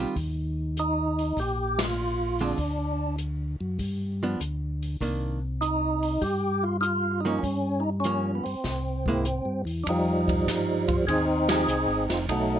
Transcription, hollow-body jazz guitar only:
0.00 0.14 D#3 medium
0.00 0.14 G3 medium
0.00 0.14 C4 medium
0.00 0.15 F4 medium
2.40 2.57 D3 medium
2.40 2.57 G#3 medium
2.40 2.57 C4 medium
2.40 2.57 F4 medium
4.23 4.39 F3 medium
4.23 4.39 B3 medium
4.23 4.40 D4 medium
5.01 5.38 D#3 soft
5.01 5.39 A#3 medium
5.01 5.39 D4 medium
7.25 7.42 F3 medium
7.25 7.42 A#3 medium
7.25 7.43 C#4 medium
8.05 8.42 F3 medium
8.05 8.42 A#3 medium
8.05 8.43 C#4 medium
9.08 9.24 G#3 medium
9.08 9.25 A#3 medium
9.08 9.25 E4 medium
11.49 11.66 F3 medium
11.49 11.67 G#3 medium
11.49 11.67 D#4 medium
11.49 11.67 G4 medium

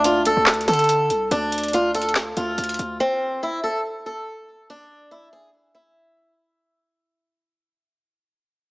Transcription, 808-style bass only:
0.00 0.34 D2 loud
0.37 0.67 D2 loud
0.68 1.12 D3 loud
1.10 1.30 C2 loud
1.31 2.33 D2 loud
2.37 2.57 D2 loud
2.58 2.78 D2 loud
2.79 2.99 D2 loud

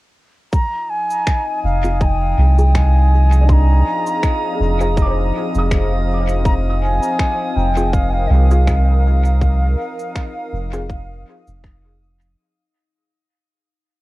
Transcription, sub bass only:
1.64 2.35 F1 loud
2.38 3.83 C2 medium
4.60 5.31 F1 loud
5.55 6.99 F1 loud
7.56 8.27 F1 medium
8.30 9.75 C2 loud
10.53 11.24 F1 loud
11.48 12.35 F1 medium

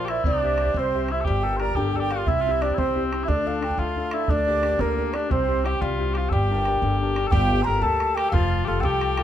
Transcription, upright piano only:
0.09 0.23 A#4 soft
0.09 0.22 C5 soft
0.09 0.23 D5 medium
0.26 0.59 C4 medium
0.43 0.58 G4 soft
0.43 0.59 C5 soft
0.43 0.60 E5 medium
0.60 0.88 G4 soft
0.60 0.88 C5 soft
0.60 0.88 E5 medium
0.77 1.10 G3 medium
0.95 1.09 G4 soft
0.95 1.09 C5 soft
0.95 1.10 E5 soft
1.10 1.24 G4 soft
1.10 1.24 C5 soft
1.10 1.24 E5 soft
1.27 1.60 G3 medium
1.44 1.59 G4 medium
1.44 1.60 A#4 soft
1.44 1.60 D5 medium
1.61 1.88 G4 medium
1.61 1.89 A#4 medium
1.61 1.89 D5 medium
1.77 2.10 D3 medium
1.96 2.10 G4 soft
1.96 2.11 A#4 soft
1.96 2.11 D5 medium
2.12 2.25 G4 soft
2.12 2.25 A#4 soft
2.12 2.25 D5 medium
2.28 2.61 C3 medium
2.47 2.61 C4 soft
2.47 2.61 E4 soft
2.47 2.62 G4 medium
2.62 2.90 C4 soft
2.62 2.90 E4 soft
2.62 2.91 G4 medium
2.79 3.12 G3 medium
2.95 3.10 C4 medium
2.95 3.11 E4 soft
2.95 3.11 G4 soft
3.12 3.25 C4 soft
3.12 3.26 E4 soft
3.12 3.26 G4 soft
3.28 3.62 D3 medium
3.46 3.60 D4 soft
3.46 3.61 F4 soft
3.46 3.61 A4 soft
3.61 3.90 D4 soft
3.61 3.90 F4 soft
3.61 3.90 A4 medium
3.79 4.13 A3 medium
3.97 4.12 D4 soft
3.97 4.12 F4 soft
3.97 4.12 A4 soft
4.14 4.27 D4 soft
4.14 4.27 F4 soft
4.14 4.27 A4 soft
4.30 4.64 D3 medium
4.47 4.60 A#3 soft
4.47 4.61 D4 soft
4.47 4.61 G4 medium
4.62 4.90 A#3 medium
4.62 4.91 D4 medium
4.62 4.91 G4 medium
4.79 5.13 D3 medium
4.98 5.12 A#3 soft
4.98 5.13 D4 soft
4.98 5.13 G4 soft
5.13 5.27 A#3 soft
5.13 5.28 D4 soft
5.13 5.28 G4 medium
5.30 5.64 C3 medium
5.48 5.63 C4 soft
5.48 5.63 E4 soft
5.48 5.64 G4 medium
5.64 5.92 C4 soft
5.64 5.92 E4 soft
5.64 5.93 G4 medium
5.81 6.15 G3 medium
5.98 6.14 C4 soft
5.98 6.15 E4 soft
5.98 6.15 G4 medium
6.16 6.29 C4 soft
6.16 6.29 E4 soft
6.16 6.29 G4 medium
6.32 6.65 G3 medium
6.51 6.65 D4 medium
6.51 6.66 G4 soft
6.51 6.66 A#4 medium
6.67 6.94 D4 soft
6.67 6.94 G4 soft
6.67 6.95 A#4 medium
6.83 7.16 D3 medium
7.01 7.15 D4 soft
7.01 7.15 G4 soft
7.01 7.16 A#4 soft
7.16 7.29 D4 soft
7.16 7.30 G4 soft
7.16 7.30 A#4 medium
7.33 8.30 G3 medium
7.67 7.82 G4 medium
7.67 7.82 A4 medium
7.67 8.01 A#4 medium
7.83 8.17 A#3 medium
7.83 8.15 G4 medium
7.83 8.15 A4 medium
8.17 8.33 G4 medium
8.17 8.33 A4 soft
8.17 8.33 A#4 medium
8.33 9.23 F3 medium
8.67 8.82 F4 medium
8.67 8.82 G4 medium
8.67 8.83 A4 medium
8.83 9.16 F4 medium
8.83 9.17 G4 medium
8.83 9.17 A4 medium
9.18 9.23 F4 medium
9.18 9.23 G4 soft
9.18 9.23 A4 medium

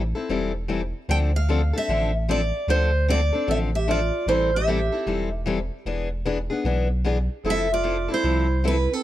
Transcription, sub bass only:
0.00 0.13 A1 medium
0.29 0.93 E1 medium
1.09 1.72 D2 medium
1.88 2.52 A1 medium
2.67 3.31 D2 medium
3.48 4.11 A1 medium
4.26 4.90 A1 medium
5.06 5.70 E1 medium
5.85 6.49 E1 medium
6.64 7.28 B1 medium
7.44 8.08 F1 medium
8.24 8.87 C2 medium

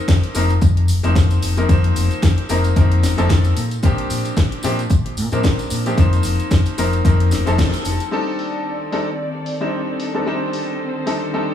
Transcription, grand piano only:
0.00 0.32 F3 loud
0.00 0.32 A#3 medium
0.00 0.32 C4 medium
0.00 0.32 D#4 medium
0.00 0.33 A#4 loud
0.35 0.50 F3 medium
0.35 0.50 A#3 medium
0.35 0.50 C4 medium
0.35 0.50 D#4 medium
0.35 0.50 A#4 loud
1.03 1.54 F3 medium
1.03 1.54 A#3 medium
1.03 1.54 C4 medium
1.03 1.54 D#4 medium
1.03 1.54 C5 medium
1.57 1.67 F3 medium
1.57 1.67 A#3 medium
1.57 1.68 C4 medium
1.57 1.68 D#4 medium
1.57 1.68 A#4 medium
1.69 2.46 F3 medium
1.69 2.47 A#3 medium
1.69 2.47 C4 medium
1.69 2.47 D#4 medium
1.69 2.47 C5 loud
2.49 2.71 F3 medium
2.49 2.72 A#3 medium
2.49 2.72 C4 medium
2.49 2.72 D#4 medium
2.49 2.72 A#4 loud
2.76 3.14 F3 medium
2.76 3.14 A#3 medium
2.76 3.15 C4 medium
2.76 3.15 D#4 medium
2.76 3.15 A#4 loud
3.18 3.55 F3 medium
3.18 3.55 A#3 medium
3.18 3.55 C4 medium
3.18 3.55 D#4 medium
3.18 3.56 A4 loud
3.83 4.61 F3 loud
3.83 4.61 A#3 medium
3.83 4.61 C4 medium
3.83 4.61 D4 medium
3.83 4.62 G4 loud
4.64 4.79 F3 medium
4.64 4.79 A#3 medium
4.64 4.79 C4 medium
4.64 4.79 D4 medium
4.64 4.79 G4 loud
5.32 5.82 F3 medium
5.32 5.82 A#3 medium
5.32 5.82 C4 medium
5.32 5.83 D4 medium
5.32 5.83 A#4 medium
5.86 5.96 F3 medium
5.86 5.96 A#3 medium
5.86 5.96 C4 medium
5.86 5.96 D4 medium
5.86 5.96 G4 medium
5.97 6.75 F3 medium
5.97 6.75 A#3 medium
5.97 6.76 C4 medium
5.97 6.76 D#4 medium
5.97 6.76 C5 loud
6.78 7.00 F3 medium
6.78 7.00 A#3 medium
6.78 7.00 C4 medium
6.78 7.01 D#4 medium
6.78 7.01 A#4 loud
7.05 7.43 F3 medium
7.05 7.43 A#3 medium
7.05 7.43 C4 medium
7.05 7.43 D#4 medium
7.05 7.43 A#4 loud
7.46 8.09 F3 medium
7.46 8.09 A#3 medium
7.46 8.09 C4 medium
7.46 8.10 D#4 medium
7.46 8.10 A4 loud
8.11 8.89 G3 medium
8.11 8.89 C4 medium
8.11 8.90 D4 medium
8.11 8.90 D#4 medium
8.11 8.90 A4 loud
8.92 9.07 G3 medium
8.92 9.07 C4 medium
8.92 9.07 D4 medium
8.92 9.07 D#4 medium
8.92 9.08 A4 medium
9.61 10.11 G3 medium
9.61 10.11 C4 medium
9.61 10.11 D4 medium
9.61 10.11 D#4 medium
9.61 10.11 C5 medium
10.14 10.24 G3 medium
10.14 10.25 C4 medium
10.14 10.25 D4 medium
10.14 10.25 D#4 medium
10.14 10.25 A4 medium
10.26 11.03 G3 medium
10.26 11.04 C4 medium
10.26 11.04 D4 medium
10.26 11.04 D#4 medium
10.26 11.05 C5 medium
11.06 11.29 G3 medium
11.06 11.29 C4 medium
11.06 11.29 D4 medium
11.06 11.29 D#4 medium
11.06 11.29 A4 medium
11.33 11.54 G3 medium
11.33 11.54 C4 medium
11.33 11.54 D4 medium
11.33 11.54 D#4 medium
11.33 11.54 A4 medium

